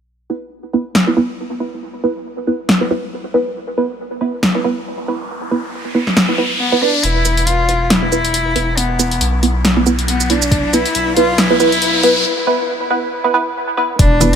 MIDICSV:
0, 0, Header, 1, 6, 480
1, 0, Start_track
1, 0, Tempo, 434783
1, 88, Time_signature, 4, 2, 24, 8
1, 15849, End_track
2, 0, Start_track
2, 0, Title_t, "Cello"
2, 0, Program_c, 0, 42
2, 7285, Note_on_c, 0, 59, 88
2, 7526, Note_on_c, 0, 62, 93
2, 7543, Note_off_c, 0, 59, 0
2, 7764, Note_on_c, 0, 64, 103
2, 7781, Note_off_c, 0, 62, 0
2, 8242, Note_on_c, 0, 65, 106
2, 8259, Note_off_c, 0, 64, 0
2, 8659, Note_off_c, 0, 65, 0
2, 8659, Note_on_c, 0, 65, 75
2, 8723, Note_on_c, 0, 64, 104
2, 8739, Note_off_c, 0, 65, 0
2, 9687, Note_on_c, 0, 59, 87
2, 9703, Note_off_c, 0, 64, 0
2, 10408, Note_off_c, 0, 59, 0
2, 11129, Note_on_c, 0, 59, 89
2, 11375, Note_on_c, 0, 62, 99
2, 11391, Note_off_c, 0, 59, 0
2, 11852, Note_on_c, 0, 64, 107
2, 11868, Note_off_c, 0, 62, 0
2, 12330, Note_off_c, 0, 64, 0
2, 12335, Note_on_c, 0, 65, 106
2, 12573, Note_on_c, 0, 64, 103
2, 12590, Note_off_c, 0, 65, 0
2, 13531, Note_off_c, 0, 64, 0
2, 15455, Note_on_c, 0, 62, 104
2, 15843, Note_off_c, 0, 62, 0
2, 15849, End_track
3, 0, Start_track
3, 0, Title_t, "Synth stab"
3, 0, Program_c, 1, 62
3, 327, Note_on_c, 1, 59, 79
3, 328, Note_on_c, 1, 64, 71
3, 328, Note_on_c, 1, 71, 86
3, 458, Note_off_c, 1, 59, 0
3, 458, Note_off_c, 1, 64, 0
3, 459, Note_off_c, 1, 71, 0
3, 810, Note_on_c, 1, 59, 80
3, 810, Note_on_c, 1, 64, 72
3, 810, Note_on_c, 1, 71, 86
3, 939, Note_off_c, 1, 64, 0
3, 940, Note_off_c, 1, 59, 0
3, 940, Note_off_c, 1, 71, 0
3, 1183, Note_on_c, 1, 59, 78
3, 1183, Note_on_c, 1, 64, 73
3, 1183, Note_on_c, 1, 71, 84
3, 1272, Note_off_c, 1, 59, 0
3, 1272, Note_off_c, 1, 71, 0
3, 1273, Note_off_c, 1, 64, 0
3, 1288, Note_on_c, 1, 64, 85
3, 1288, Note_on_c, 1, 71, 100
3, 1289, Note_on_c, 1, 59, 93
3, 1418, Note_off_c, 1, 71, 0
3, 1419, Note_off_c, 1, 59, 0
3, 1419, Note_off_c, 1, 64, 0
3, 1768, Note_on_c, 1, 59, 83
3, 1768, Note_on_c, 1, 64, 75
3, 1768, Note_on_c, 1, 71, 91
3, 1898, Note_off_c, 1, 64, 0
3, 1899, Note_off_c, 1, 59, 0
3, 1899, Note_off_c, 1, 71, 0
3, 2248, Note_on_c, 1, 59, 76
3, 2248, Note_on_c, 1, 64, 74
3, 2248, Note_on_c, 1, 71, 87
3, 2378, Note_off_c, 1, 59, 0
3, 2378, Note_off_c, 1, 64, 0
3, 2378, Note_off_c, 1, 71, 0
3, 2729, Note_on_c, 1, 59, 80
3, 2729, Note_on_c, 1, 64, 73
3, 2729, Note_on_c, 1, 71, 88
3, 2859, Note_off_c, 1, 59, 0
3, 2859, Note_off_c, 1, 64, 0
3, 2859, Note_off_c, 1, 71, 0
3, 3103, Note_on_c, 1, 59, 77
3, 3103, Note_on_c, 1, 64, 71
3, 3103, Note_on_c, 1, 71, 86
3, 3192, Note_off_c, 1, 59, 0
3, 3192, Note_off_c, 1, 64, 0
3, 3192, Note_off_c, 1, 71, 0
3, 3208, Note_on_c, 1, 59, 92
3, 3208, Note_on_c, 1, 71, 104
3, 3209, Note_on_c, 1, 64, 85
3, 3339, Note_off_c, 1, 59, 0
3, 3339, Note_off_c, 1, 64, 0
3, 3339, Note_off_c, 1, 71, 0
3, 3688, Note_on_c, 1, 64, 79
3, 3688, Note_on_c, 1, 71, 95
3, 3689, Note_on_c, 1, 59, 84
3, 3819, Note_off_c, 1, 59, 0
3, 3819, Note_off_c, 1, 64, 0
3, 3819, Note_off_c, 1, 71, 0
3, 4168, Note_on_c, 1, 59, 78
3, 4168, Note_on_c, 1, 64, 72
3, 4168, Note_on_c, 1, 71, 87
3, 4299, Note_off_c, 1, 59, 0
3, 4299, Note_off_c, 1, 64, 0
3, 4299, Note_off_c, 1, 71, 0
3, 4646, Note_on_c, 1, 71, 87
3, 4648, Note_on_c, 1, 59, 78
3, 4648, Note_on_c, 1, 64, 73
3, 4778, Note_off_c, 1, 59, 0
3, 4778, Note_off_c, 1, 64, 0
3, 4778, Note_off_c, 1, 71, 0
3, 5023, Note_on_c, 1, 59, 81
3, 5023, Note_on_c, 1, 64, 71
3, 5023, Note_on_c, 1, 71, 87
3, 5112, Note_off_c, 1, 64, 0
3, 5113, Note_off_c, 1, 59, 0
3, 5113, Note_off_c, 1, 71, 0
3, 5127, Note_on_c, 1, 59, 95
3, 5127, Note_on_c, 1, 64, 87
3, 5127, Note_on_c, 1, 71, 105
3, 5258, Note_off_c, 1, 59, 0
3, 5258, Note_off_c, 1, 64, 0
3, 5258, Note_off_c, 1, 71, 0
3, 5609, Note_on_c, 1, 64, 77
3, 5610, Note_on_c, 1, 59, 85
3, 5610, Note_on_c, 1, 71, 91
3, 5739, Note_off_c, 1, 59, 0
3, 5739, Note_off_c, 1, 64, 0
3, 5740, Note_off_c, 1, 71, 0
3, 6087, Note_on_c, 1, 59, 78
3, 6088, Note_on_c, 1, 64, 73
3, 6088, Note_on_c, 1, 71, 89
3, 6218, Note_off_c, 1, 59, 0
3, 6218, Note_off_c, 1, 64, 0
3, 6218, Note_off_c, 1, 71, 0
3, 6566, Note_on_c, 1, 59, 80
3, 6566, Note_on_c, 1, 64, 73
3, 6566, Note_on_c, 1, 71, 89
3, 6698, Note_off_c, 1, 59, 0
3, 6698, Note_off_c, 1, 64, 0
3, 6698, Note_off_c, 1, 71, 0
3, 6941, Note_on_c, 1, 59, 80
3, 6941, Note_on_c, 1, 64, 73
3, 6941, Note_on_c, 1, 71, 89
3, 7026, Note_off_c, 1, 59, 0
3, 7026, Note_off_c, 1, 64, 0
3, 7026, Note_off_c, 1, 71, 0
3, 7044, Note_on_c, 1, 71, 108
3, 7045, Note_on_c, 1, 64, 89
3, 7046, Note_on_c, 1, 59, 95
3, 7239, Note_off_c, 1, 59, 0
3, 7239, Note_off_c, 1, 64, 0
3, 7239, Note_off_c, 1, 71, 0
3, 7421, Note_on_c, 1, 59, 90
3, 7422, Note_on_c, 1, 64, 81
3, 7422, Note_on_c, 1, 71, 99
3, 7511, Note_off_c, 1, 59, 0
3, 7512, Note_off_c, 1, 64, 0
3, 7512, Note_off_c, 1, 71, 0
3, 7528, Note_on_c, 1, 59, 89
3, 7528, Note_on_c, 1, 64, 82
3, 7528, Note_on_c, 1, 71, 97
3, 7720, Note_off_c, 1, 59, 0
3, 7720, Note_off_c, 1, 64, 0
3, 7720, Note_off_c, 1, 71, 0
3, 8006, Note_on_c, 1, 71, 88
3, 8007, Note_on_c, 1, 59, 81
3, 8007, Note_on_c, 1, 64, 71
3, 8137, Note_off_c, 1, 71, 0
3, 8138, Note_off_c, 1, 59, 0
3, 8138, Note_off_c, 1, 64, 0
3, 8487, Note_on_c, 1, 59, 83
3, 8487, Note_on_c, 1, 64, 76
3, 8487, Note_on_c, 1, 71, 89
3, 8618, Note_off_c, 1, 59, 0
3, 8618, Note_off_c, 1, 64, 0
3, 8618, Note_off_c, 1, 71, 0
3, 8860, Note_on_c, 1, 59, 81
3, 8860, Note_on_c, 1, 64, 75
3, 8860, Note_on_c, 1, 71, 89
3, 8951, Note_off_c, 1, 59, 0
3, 8951, Note_off_c, 1, 64, 0
3, 8951, Note_off_c, 1, 71, 0
3, 8965, Note_on_c, 1, 71, 105
3, 8966, Note_on_c, 1, 59, 95
3, 8966, Note_on_c, 1, 64, 86
3, 9097, Note_off_c, 1, 71, 0
3, 9098, Note_off_c, 1, 59, 0
3, 9098, Note_off_c, 1, 64, 0
3, 9446, Note_on_c, 1, 59, 84
3, 9446, Note_on_c, 1, 64, 77
3, 9446, Note_on_c, 1, 71, 95
3, 9578, Note_off_c, 1, 59, 0
3, 9578, Note_off_c, 1, 64, 0
3, 9578, Note_off_c, 1, 71, 0
3, 9925, Note_on_c, 1, 64, 74
3, 9926, Note_on_c, 1, 71, 89
3, 9927, Note_on_c, 1, 59, 81
3, 10057, Note_off_c, 1, 64, 0
3, 10058, Note_off_c, 1, 59, 0
3, 10058, Note_off_c, 1, 71, 0
3, 10407, Note_on_c, 1, 59, 81
3, 10407, Note_on_c, 1, 71, 91
3, 10408, Note_on_c, 1, 64, 73
3, 10538, Note_off_c, 1, 59, 0
3, 10538, Note_off_c, 1, 64, 0
3, 10538, Note_off_c, 1, 71, 0
3, 10782, Note_on_c, 1, 59, 81
3, 10782, Note_on_c, 1, 64, 74
3, 10782, Note_on_c, 1, 71, 90
3, 10872, Note_off_c, 1, 59, 0
3, 10872, Note_off_c, 1, 64, 0
3, 10872, Note_off_c, 1, 71, 0
3, 10889, Note_on_c, 1, 59, 97
3, 10889, Note_on_c, 1, 64, 87
3, 10889, Note_on_c, 1, 71, 106
3, 11019, Note_off_c, 1, 59, 0
3, 11019, Note_off_c, 1, 64, 0
3, 11019, Note_off_c, 1, 71, 0
3, 11368, Note_on_c, 1, 59, 87
3, 11368, Note_on_c, 1, 64, 80
3, 11368, Note_on_c, 1, 71, 95
3, 11499, Note_off_c, 1, 59, 0
3, 11499, Note_off_c, 1, 64, 0
3, 11499, Note_off_c, 1, 71, 0
3, 11848, Note_on_c, 1, 59, 79
3, 11848, Note_on_c, 1, 64, 75
3, 11848, Note_on_c, 1, 71, 88
3, 11978, Note_off_c, 1, 59, 0
3, 11978, Note_off_c, 1, 71, 0
3, 11979, Note_off_c, 1, 64, 0
3, 12327, Note_on_c, 1, 59, 81
3, 12327, Note_on_c, 1, 64, 75
3, 12327, Note_on_c, 1, 71, 91
3, 12458, Note_off_c, 1, 59, 0
3, 12458, Note_off_c, 1, 64, 0
3, 12458, Note_off_c, 1, 71, 0
3, 12700, Note_on_c, 1, 64, 75
3, 12700, Note_on_c, 1, 71, 90
3, 12701, Note_on_c, 1, 59, 82
3, 12791, Note_off_c, 1, 59, 0
3, 12791, Note_off_c, 1, 64, 0
3, 12791, Note_off_c, 1, 71, 0
3, 12806, Note_on_c, 1, 59, 96
3, 12806, Note_on_c, 1, 64, 88
3, 12807, Note_on_c, 1, 71, 107
3, 12938, Note_off_c, 1, 59, 0
3, 12938, Note_off_c, 1, 64, 0
3, 12938, Note_off_c, 1, 71, 0
3, 13286, Note_on_c, 1, 59, 87
3, 13286, Note_on_c, 1, 64, 80
3, 13286, Note_on_c, 1, 71, 95
3, 13417, Note_off_c, 1, 71, 0
3, 13418, Note_off_c, 1, 59, 0
3, 13418, Note_off_c, 1, 64, 0
3, 13766, Note_on_c, 1, 59, 83
3, 13767, Note_on_c, 1, 64, 74
3, 13767, Note_on_c, 1, 71, 90
3, 13898, Note_off_c, 1, 59, 0
3, 13898, Note_off_c, 1, 64, 0
3, 13898, Note_off_c, 1, 71, 0
3, 14246, Note_on_c, 1, 64, 75
3, 14246, Note_on_c, 1, 71, 93
3, 14247, Note_on_c, 1, 59, 83
3, 14377, Note_off_c, 1, 71, 0
3, 14378, Note_off_c, 1, 59, 0
3, 14378, Note_off_c, 1, 64, 0
3, 14620, Note_on_c, 1, 71, 90
3, 14621, Note_on_c, 1, 59, 83
3, 14621, Note_on_c, 1, 64, 76
3, 14711, Note_off_c, 1, 59, 0
3, 14711, Note_off_c, 1, 64, 0
3, 14711, Note_off_c, 1, 71, 0
3, 14726, Note_on_c, 1, 64, 89
3, 14727, Note_on_c, 1, 59, 100
3, 14727, Note_on_c, 1, 71, 106
3, 14858, Note_off_c, 1, 59, 0
3, 14858, Note_off_c, 1, 64, 0
3, 14858, Note_off_c, 1, 71, 0
3, 15206, Note_on_c, 1, 71, 99
3, 15207, Note_on_c, 1, 59, 86
3, 15207, Note_on_c, 1, 64, 82
3, 15338, Note_off_c, 1, 59, 0
3, 15338, Note_off_c, 1, 64, 0
3, 15338, Note_off_c, 1, 71, 0
3, 15686, Note_on_c, 1, 59, 80
3, 15686, Note_on_c, 1, 64, 74
3, 15686, Note_on_c, 1, 71, 91
3, 15818, Note_off_c, 1, 59, 0
3, 15818, Note_off_c, 1, 64, 0
3, 15818, Note_off_c, 1, 71, 0
3, 15849, End_track
4, 0, Start_track
4, 0, Title_t, "Sub bass"
4, 0, Program_c, 2, 38
4, 7767, Note_on_c, 2, 28, 95
4, 9434, Note_off_c, 2, 28, 0
4, 9447, Note_on_c, 2, 28, 81
4, 10154, Note_off_c, 2, 28, 0
4, 10166, Note_on_c, 2, 35, 96
4, 11965, Note_off_c, 2, 35, 0
4, 12088, Note_on_c, 2, 35, 96
4, 13528, Note_off_c, 2, 35, 0
4, 15447, Note_on_c, 2, 28, 99
4, 15849, Note_off_c, 2, 28, 0
4, 15849, End_track
5, 0, Start_track
5, 0, Title_t, "Riser"
5, 0, Program_c, 3, 103
5, 3928, Note_on_c, 3, 60, 72
5, 7766, Note_off_c, 3, 60, 0
5, 7766, Note_on_c, 3, 60, 78
5, 13527, Note_off_c, 3, 60, 0
5, 15849, End_track
6, 0, Start_track
6, 0, Title_t, "Drums"
6, 1048, Note_on_c, 9, 38, 110
6, 1159, Note_off_c, 9, 38, 0
6, 2968, Note_on_c, 9, 38, 112
6, 3078, Note_off_c, 9, 38, 0
6, 4889, Note_on_c, 9, 38, 118
6, 5000, Note_off_c, 9, 38, 0
6, 6703, Note_on_c, 9, 38, 38
6, 6808, Note_off_c, 9, 38, 0
6, 6808, Note_on_c, 9, 38, 117
6, 6918, Note_off_c, 9, 38, 0
6, 7766, Note_on_c, 9, 42, 82
6, 7877, Note_off_c, 9, 42, 0
6, 8006, Note_on_c, 9, 42, 51
6, 8006, Note_on_c, 9, 82, 72
6, 8116, Note_off_c, 9, 42, 0
6, 8116, Note_off_c, 9, 82, 0
6, 8141, Note_on_c, 9, 42, 52
6, 8245, Note_off_c, 9, 42, 0
6, 8245, Note_on_c, 9, 42, 82
6, 8356, Note_off_c, 9, 42, 0
6, 8486, Note_on_c, 9, 42, 53
6, 8597, Note_off_c, 9, 42, 0
6, 8725, Note_on_c, 9, 38, 113
6, 8725, Note_on_c, 9, 42, 80
6, 8836, Note_off_c, 9, 38, 0
6, 8836, Note_off_c, 9, 42, 0
6, 8967, Note_on_c, 9, 82, 48
6, 9077, Note_off_c, 9, 82, 0
6, 9103, Note_on_c, 9, 42, 54
6, 9207, Note_off_c, 9, 42, 0
6, 9207, Note_on_c, 9, 42, 83
6, 9318, Note_off_c, 9, 42, 0
6, 9448, Note_on_c, 9, 46, 95
6, 9558, Note_off_c, 9, 46, 0
6, 9688, Note_on_c, 9, 42, 84
6, 9798, Note_off_c, 9, 42, 0
6, 9929, Note_on_c, 9, 42, 53
6, 9929, Note_on_c, 9, 82, 72
6, 10040, Note_off_c, 9, 42, 0
6, 10040, Note_off_c, 9, 82, 0
6, 10063, Note_on_c, 9, 42, 53
6, 10168, Note_off_c, 9, 42, 0
6, 10168, Note_on_c, 9, 42, 81
6, 10278, Note_off_c, 9, 42, 0
6, 10409, Note_on_c, 9, 42, 54
6, 10520, Note_off_c, 9, 42, 0
6, 10650, Note_on_c, 9, 38, 121
6, 10650, Note_on_c, 9, 42, 81
6, 10760, Note_off_c, 9, 38, 0
6, 10760, Note_off_c, 9, 42, 0
6, 10889, Note_on_c, 9, 82, 50
6, 11000, Note_off_c, 9, 82, 0
6, 11025, Note_on_c, 9, 42, 55
6, 11131, Note_off_c, 9, 42, 0
6, 11131, Note_on_c, 9, 42, 82
6, 11241, Note_off_c, 9, 42, 0
6, 11265, Note_on_c, 9, 82, 76
6, 11370, Note_on_c, 9, 46, 97
6, 11375, Note_off_c, 9, 82, 0
6, 11480, Note_off_c, 9, 46, 0
6, 11504, Note_on_c, 9, 82, 76
6, 11607, Note_on_c, 9, 36, 127
6, 11609, Note_on_c, 9, 42, 82
6, 11615, Note_off_c, 9, 82, 0
6, 11718, Note_off_c, 9, 36, 0
6, 11720, Note_off_c, 9, 42, 0
6, 11851, Note_on_c, 9, 42, 52
6, 11851, Note_on_c, 9, 82, 76
6, 11961, Note_off_c, 9, 42, 0
6, 11961, Note_off_c, 9, 82, 0
6, 11984, Note_on_c, 9, 42, 54
6, 12088, Note_off_c, 9, 42, 0
6, 12088, Note_on_c, 9, 42, 82
6, 12198, Note_off_c, 9, 42, 0
6, 12326, Note_on_c, 9, 42, 55
6, 12437, Note_off_c, 9, 42, 0
6, 12566, Note_on_c, 9, 38, 121
6, 12566, Note_on_c, 9, 42, 81
6, 12676, Note_off_c, 9, 38, 0
6, 12676, Note_off_c, 9, 42, 0
6, 12806, Note_on_c, 9, 82, 51
6, 12916, Note_off_c, 9, 82, 0
6, 12943, Note_on_c, 9, 42, 53
6, 13047, Note_off_c, 9, 42, 0
6, 13047, Note_on_c, 9, 42, 82
6, 13157, Note_off_c, 9, 42, 0
6, 13286, Note_on_c, 9, 46, 93
6, 13396, Note_off_c, 9, 46, 0
6, 15447, Note_on_c, 9, 36, 122
6, 15448, Note_on_c, 9, 42, 85
6, 15558, Note_off_c, 9, 36, 0
6, 15558, Note_off_c, 9, 42, 0
6, 15682, Note_on_c, 9, 63, 60
6, 15688, Note_on_c, 9, 42, 55
6, 15688, Note_on_c, 9, 82, 75
6, 15693, Note_on_c, 9, 64, 95
6, 15792, Note_off_c, 9, 63, 0
6, 15798, Note_off_c, 9, 42, 0
6, 15798, Note_off_c, 9, 82, 0
6, 15803, Note_off_c, 9, 64, 0
6, 15849, End_track
0, 0, End_of_file